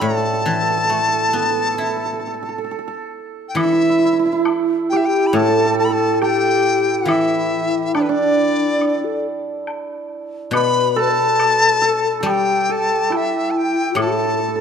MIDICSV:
0, 0, Header, 1, 6, 480
1, 0, Start_track
1, 0, Tempo, 884956
1, 9, Time_signature, 4, 2, 24, 8
1, 3370, Tempo, 862069
1, 8043, End_track
2, 0, Start_track
2, 0, Title_t, "Dizi"
2, 0, Program_c, 0, 73
2, 9, Note_on_c, 0, 81, 95
2, 1691, Note_off_c, 0, 81, 0
2, 1890, Note_on_c, 0, 79, 70
2, 1938, Note_on_c, 0, 76, 89
2, 1946, Note_off_c, 0, 79, 0
2, 2418, Note_off_c, 0, 76, 0
2, 2656, Note_on_c, 0, 79, 84
2, 2693, Note_on_c, 0, 76, 64
2, 2701, Note_off_c, 0, 79, 0
2, 2741, Note_on_c, 0, 79, 75
2, 2749, Note_off_c, 0, 76, 0
2, 2856, Note_on_c, 0, 83, 68
2, 2864, Note_off_c, 0, 79, 0
2, 2902, Note_on_c, 0, 81, 81
2, 2911, Note_off_c, 0, 83, 0
2, 3136, Note_off_c, 0, 81, 0
2, 3140, Note_on_c, 0, 81, 89
2, 3171, Note_on_c, 0, 83, 69
2, 3179, Note_off_c, 0, 81, 0
2, 3214, Note_on_c, 0, 81, 91
2, 3222, Note_off_c, 0, 83, 0
2, 3372, Note_off_c, 0, 81, 0
2, 3376, Note_on_c, 0, 79, 92
2, 3859, Note_on_c, 0, 76, 83
2, 3867, Note_off_c, 0, 79, 0
2, 4335, Note_off_c, 0, 76, 0
2, 4338, Note_on_c, 0, 74, 63
2, 4375, Note_on_c, 0, 71, 48
2, 4383, Note_off_c, 0, 74, 0
2, 4419, Note_on_c, 0, 74, 79
2, 4427, Note_off_c, 0, 71, 0
2, 5063, Note_off_c, 0, 74, 0
2, 5788, Note_on_c, 0, 83, 92
2, 6031, Note_on_c, 0, 81, 100
2, 6040, Note_off_c, 0, 83, 0
2, 6705, Note_off_c, 0, 81, 0
2, 6715, Note_on_c, 0, 81, 59
2, 6759, Note_on_c, 0, 79, 78
2, 6768, Note_off_c, 0, 81, 0
2, 6993, Note_on_c, 0, 81, 86
2, 7001, Note_off_c, 0, 79, 0
2, 7241, Note_on_c, 0, 76, 73
2, 7250, Note_off_c, 0, 81, 0
2, 7430, Note_on_c, 0, 81, 53
2, 7439, Note_off_c, 0, 76, 0
2, 7466, Note_on_c, 0, 79, 80
2, 7475, Note_off_c, 0, 81, 0
2, 7697, Note_off_c, 0, 79, 0
2, 7709, Note_on_c, 0, 81, 76
2, 8043, Note_off_c, 0, 81, 0
2, 8043, End_track
3, 0, Start_track
3, 0, Title_t, "Hammered dulcimer"
3, 0, Program_c, 1, 15
3, 0, Note_on_c, 1, 62, 78
3, 0, Note_on_c, 1, 64, 77
3, 0, Note_on_c, 1, 67, 69
3, 0, Note_on_c, 1, 69, 59
3, 56, Note_off_c, 1, 69, 0
3, 58, Note_on_c, 1, 69, 46
3, 92, Note_off_c, 1, 69, 0
3, 94, Note_on_c, 1, 69, 49
3, 133, Note_off_c, 1, 69, 0
3, 135, Note_on_c, 1, 69, 46
3, 180, Note_off_c, 1, 69, 0
3, 182, Note_on_c, 1, 69, 54
3, 222, Note_off_c, 1, 69, 0
3, 224, Note_on_c, 1, 69, 44
3, 256, Note_off_c, 1, 69, 0
3, 258, Note_on_c, 1, 69, 48
3, 293, Note_off_c, 1, 69, 0
3, 296, Note_on_c, 1, 69, 45
3, 334, Note_off_c, 1, 69, 0
3, 336, Note_on_c, 1, 69, 50
3, 377, Note_off_c, 1, 69, 0
3, 379, Note_on_c, 1, 69, 48
3, 417, Note_off_c, 1, 69, 0
3, 419, Note_on_c, 1, 69, 51
3, 456, Note_off_c, 1, 69, 0
3, 458, Note_on_c, 1, 69, 45
3, 496, Note_off_c, 1, 69, 0
3, 498, Note_on_c, 1, 69, 47
3, 535, Note_off_c, 1, 69, 0
3, 537, Note_on_c, 1, 69, 40
3, 584, Note_off_c, 1, 69, 0
3, 587, Note_on_c, 1, 69, 44
3, 611, Note_off_c, 1, 69, 0
3, 614, Note_on_c, 1, 69, 40
3, 655, Note_off_c, 1, 69, 0
3, 657, Note_on_c, 1, 69, 39
3, 695, Note_off_c, 1, 69, 0
3, 698, Note_on_c, 1, 69, 39
3, 734, Note_off_c, 1, 69, 0
3, 737, Note_on_c, 1, 69, 51
3, 780, Note_off_c, 1, 69, 0
3, 782, Note_on_c, 1, 69, 47
3, 817, Note_off_c, 1, 69, 0
3, 819, Note_on_c, 1, 69, 46
3, 861, Note_off_c, 1, 69, 0
3, 862, Note_off_c, 1, 62, 0
3, 864, Note_on_c, 1, 69, 41
3, 898, Note_off_c, 1, 69, 0
3, 901, Note_on_c, 1, 69, 49
3, 945, Note_off_c, 1, 69, 0
3, 947, Note_on_c, 1, 69, 44
3, 955, Note_off_c, 1, 64, 0
3, 984, Note_off_c, 1, 69, 0
3, 987, Note_on_c, 1, 69, 48
3, 1010, Note_off_c, 1, 67, 0
3, 1022, Note_off_c, 1, 69, 0
3, 1025, Note_on_c, 1, 69, 40
3, 1065, Note_off_c, 1, 69, 0
3, 1067, Note_on_c, 1, 69, 43
3, 1113, Note_off_c, 1, 69, 0
3, 1115, Note_on_c, 1, 69, 40
3, 1151, Note_off_c, 1, 69, 0
3, 1154, Note_on_c, 1, 69, 44
3, 1189, Note_off_c, 1, 69, 0
3, 1191, Note_on_c, 1, 69, 41
3, 1230, Note_off_c, 1, 69, 0
3, 1232, Note_on_c, 1, 69, 45
3, 1267, Note_off_c, 1, 69, 0
3, 1269, Note_on_c, 1, 69, 38
3, 1314, Note_off_c, 1, 69, 0
3, 1316, Note_on_c, 1, 69, 47
3, 1347, Note_off_c, 1, 69, 0
3, 1350, Note_on_c, 1, 69, 45
3, 1398, Note_off_c, 1, 69, 0
3, 1400, Note_on_c, 1, 69, 47
3, 1432, Note_off_c, 1, 69, 0
3, 1434, Note_on_c, 1, 69, 42
3, 1469, Note_off_c, 1, 69, 0
3, 1471, Note_on_c, 1, 69, 52
3, 1509, Note_off_c, 1, 69, 0
3, 1511, Note_on_c, 1, 69, 44
3, 1558, Note_off_c, 1, 69, 0
3, 1560, Note_on_c, 1, 69, 52
3, 1930, Note_on_c, 1, 64, 67
3, 1979, Note_off_c, 1, 64, 0
3, 1981, Note_on_c, 1, 64, 47
3, 2018, Note_off_c, 1, 64, 0
3, 2020, Note_on_c, 1, 64, 57
3, 2072, Note_off_c, 1, 64, 0
3, 2075, Note_on_c, 1, 64, 45
3, 2111, Note_off_c, 1, 64, 0
3, 2113, Note_on_c, 1, 64, 54
3, 2161, Note_off_c, 1, 64, 0
3, 2163, Note_on_c, 1, 64, 44
3, 2196, Note_off_c, 1, 64, 0
3, 2198, Note_on_c, 1, 64, 56
3, 2236, Note_off_c, 1, 64, 0
3, 2238, Note_on_c, 1, 64, 47
3, 2272, Note_off_c, 1, 64, 0
3, 2274, Note_on_c, 1, 64, 59
3, 2306, Note_off_c, 1, 64, 0
3, 2308, Note_on_c, 1, 64, 53
3, 2345, Note_off_c, 1, 64, 0
3, 2347, Note_on_c, 1, 64, 63
3, 2672, Note_on_c, 1, 67, 84
3, 2899, Note_off_c, 1, 69, 0
3, 2901, Note_on_c, 1, 69, 79
3, 2937, Note_off_c, 1, 69, 0
3, 2939, Note_on_c, 1, 69, 58
3, 2973, Note_off_c, 1, 69, 0
3, 2975, Note_on_c, 1, 69, 63
3, 3027, Note_off_c, 1, 69, 0
3, 3029, Note_on_c, 1, 69, 54
3, 3061, Note_off_c, 1, 69, 0
3, 3063, Note_on_c, 1, 69, 64
3, 3109, Note_off_c, 1, 69, 0
3, 3112, Note_on_c, 1, 69, 60
3, 3140, Note_off_c, 1, 69, 0
3, 3143, Note_on_c, 1, 69, 60
3, 3202, Note_off_c, 1, 69, 0
3, 3204, Note_on_c, 1, 69, 73
3, 3329, Note_off_c, 1, 69, 0
3, 3331, Note_on_c, 1, 69, 55
3, 3372, Note_off_c, 1, 67, 0
3, 3374, Note_on_c, 1, 67, 75
3, 3850, Note_off_c, 1, 64, 0
3, 3852, Note_on_c, 1, 64, 63
3, 4334, Note_on_c, 1, 62, 61
3, 4413, Note_off_c, 1, 62, 0
3, 4415, Note_on_c, 1, 62, 62
3, 4961, Note_off_c, 1, 69, 0
3, 5124, Note_off_c, 1, 67, 0
3, 5782, Note_on_c, 1, 71, 78
3, 5790, Note_off_c, 1, 64, 0
3, 6015, Note_on_c, 1, 69, 84
3, 6489, Note_off_c, 1, 69, 0
3, 6491, Note_on_c, 1, 69, 83
3, 6495, Note_off_c, 1, 62, 0
3, 6704, Note_off_c, 1, 69, 0
3, 6706, Note_on_c, 1, 69, 61
3, 6739, Note_on_c, 1, 67, 74
3, 6976, Note_off_c, 1, 69, 0
3, 6978, Note_on_c, 1, 69, 66
3, 7205, Note_on_c, 1, 64, 64
3, 7302, Note_off_c, 1, 71, 0
3, 7684, Note_off_c, 1, 69, 0
3, 7686, Note_on_c, 1, 69, 54
3, 7722, Note_off_c, 1, 69, 0
3, 7725, Note_on_c, 1, 69, 42
3, 7764, Note_off_c, 1, 69, 0
3, 7767, Note_on_c, 1, 69, 39
3, 7808, Note_off_c, 1, 69, 0
3, 7810, Note_on_c, 1, 69, 39
3, 7843, Note_off_c, 1, 69, 0
3, 7845, Note_on_c, 1, 69, 40
3, 7890, Note_off_c, 1, 69, 0
3, 7893, Note_on_c, 1, 69, 39
3, 7924, Note_off_c, 1, 69, 0
3, 7926, Note_on_c, 1, 69, 48
3, 7971, Note_off_c, 1, 69, 0
3, 7973, Note_on_c, 1, 69, 40
3, 8014, Note_off_c, 1, 69, 0
3, 8016, Note_on_c, 1, 69, 51
3, 8043, Note_off_c, 1, 64, 0
3, 8043, Note_off_c, 1, 67, 0
3, 8043, Note_off_c, 1, 69, 0
3, 8043, End_track
4, 0, Start_track
4, 0, Title_t, "Xiao"
4, 0, Program_c, 2, 77
4, 1939, Note_on_c, 2, 64, 78
4, 2396, Note_off_c, 2, 64, 0
4, 2660, Note_on_c, 2, 67, 76
4, 2729, Note_off_c, 2, 67, 0
4, 2735, Note_on_c, 2, 67, 73
4, 2897, Note_on_c, 2, 69, 72
4, 2905, Note_off_c, 2, 67, 0
4, 3133, Note_off_c, 2, 69, 0
4, 3136, Note_on_c, 2, 69, 66
4, 3204, Note_off_c, 2, 69, 0
4, 3207, Note_on_c, 2, 69, 67
4, 3369, Note_on_c, 2, 67, 81
4, 3377, Note_off_c, 2, 69, 0
4, 3856, Note_on_c, 2, 64, 69
4, 3864, Note_off_c, 2, 67, 0
4, 4337, Note_on_c, 2, 62, 65
4, 4345, Note_off_c, 2, 64, 0
4, 4411, Note_off_c, 2, 62, 0
4, 4414, Note_on_c, 2, 62, 68
4, 4943, Note_on_c, 2, 69, 58
4, 4952, Note_off_c, 2, 62, 0
4, 5062, Note_off_c, 2, 69, 0
4, 5770, Note_on_c, 2, 71, 76
4, 6012, Note_on_c, 2, 69, 81
4, 6020, Note_off_c, 2, 71, 0
4, 6041, Note_on_c, 2, 71, 72
4, 6049, Note_off_c, 2, 69, 0
4, 6089, Note_on_c, 2, 69, 83
4, 6097, Note_off_c, 2, 71, 0
4, 6734, Note_off_c, 2, 69, 0
4, 6739, Note_on_c, 2, 67, 66
4, 6987, Note_on_c, 2, 69, 63
4, 6996, Note_off_c, 2, 67, 0
4, 7221, Note_on_c, 2, 64, 57
4, 7229, Note_off_c, 2, 69, 0
4, 7703, Note_on_c, 2, 69, 65
4, 7712, Note_off_c, 2, 64, 0
4, 8043, Note_off_c, 2, 69, 0
4, 8043, End_track
5, 0, Start_track
5, 0, Title_t, "Guzheng"
5, 0, Program_c, 3, 107
5, 8, Note_on_c, 3, 45, 52
5, 247, Note_on_c, 3, 52, 45
5, 486, Note_on_c, 3, 57, 35
5, 723, Note_on_c, 3, 59, 42
5, 966, Note_on_c, 3, 64, 44
5, 1203, Note_off_c, 3, 52, 0
5, 1445, Note_off_c, 3, 45, 0
5, 1447, Note_off_c, 3, 57, 0
5, 1691, Note_off_c, 3, 59, 0
5, 1925, Note_on_c, 3, 52, 52
5, 1936, Note_off_c, 3, 64, 0
5, 2891, Note_on_c, 3, 45, 57
5, 3365, Note_off_c, 3, 52, 0
5, 3839, Note_on_c, 3, 52, 49
5, 4335, Note_off_c, 3, 45, 0
5, 5293, Note_off_c, 3, 52, 0
5, 5762, Note_on_c, 3, 47, 58
5, 6719, Note_on_c, 3, 55, 61
5, 7205, Note_off_c, 3, 47, 0
5, 7678, Note_on_c, 3, 45, 50
5, 8043, Note_off_c, 3, 45, 0
5, 8043, Note_off_c, 3, 55, 0
5, 8043, End_track
6, 0, Start_track
6, 0, Title_t, "Drums"
6, 1935, Note_on_c, 9, 76, 54
6, 1989, Note_off_c, 9, 76, 0
6, 2416, Note_on_c, 9, 76, 45
6, 2416, Note_on_c, 9, 77, 44
6, 2470, Note_off_c, 9, 76, 0
6, 2470, Note_off_c, 9, 77, 0
6, 2894, Note_on_c, 9, 76, 39
6, 2949, Note_off_c, 9, 76, 0
6, 3372, Note_on_c, 9, 77, 44
6, 3428, Note_off_c, 9, 77, 0
6, 3855, Note_on_c, 9, 76, 53
6, 3911, Note_off_c, 9, 76, 0
6, 4336, Note_on_c, 9, 76, 44
6, 4336, Note_on_c, 9, 77, 39
6, 4391, Note_off_c, 9, 76, 0
6, 4391, Note_off_c, 9, 77, 0
6, 4817, Note_on_c, 9, 76, 40
6, 4873, Note_off_c, 9, 76, 0
6, 5297, Note_on_c, 9, 77, 42
6, 5352, Note_off_c, 9, 77, 0
6, 5776, Note_on_c, 9, 76, 56
6, 5831, Note_off_c, 9, 76, 0
6, 6255, Note_on_c, 9, 76, 42
6, 6255, Note_on_c, 9, 77, 41
6, 6311, Note_off_c, 9, 76, 0
6, 6311, Note_off_c, 9, 77, 0
6, 6738, Note_on_c, 9, 76, 41
6, 6794, Note_off_c, 9, 76, 0
6, 7217, Note_on_c, 9, 77, 40
6, 7272, Note_off_c, 9, 77, 0
6, 7686, Note_on_c, 9, 76, 60
6, 7742, Note_off_c, 9, 76, 0
6, 8043, End_track
0, 0, End_of_file